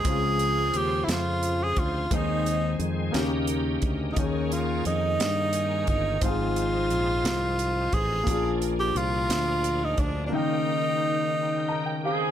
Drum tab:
HH |xxxxxx|xxxxxx|xxxxxx|xxxxxx|
SD |---o--|---o--|---o--|---o--|
BD |o----o|o----o|o----o|o----o|

HH |xxxxxx|------|
SD |---o--|------|
BD |o----o|------|